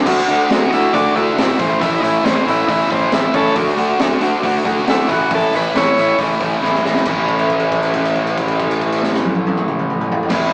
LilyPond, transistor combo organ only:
\new Staff \with { instrumentName = "Transistor combo organ" } { \time 4/4 \key a \major \tempo 4 = 137 r4. <dis' e'>8 d'8 e'8 e'8 c'8 | e'8 <dis' e'>8 c'8 e'8 <dis' e'>8 c'8 e'8 <cis' a'>8 | r2. e'8 fis'8 | a'8 b'8 <e' cis''>4 r2 |
r1 | r1 | }